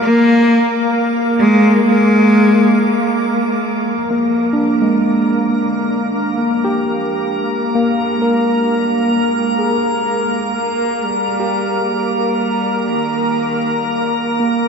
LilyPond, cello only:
\new Staff \with { instrumentName = "Cello" } { \clef bass \time 4/4 \key bes \mixolydian \tempo 4 = 66 bes4 r8 aes8 aes4. r8 | f2 d8 ees8 f4 | aes4. g8 aes8 aes4 bes8 | g4 g4 ees4. r8 | }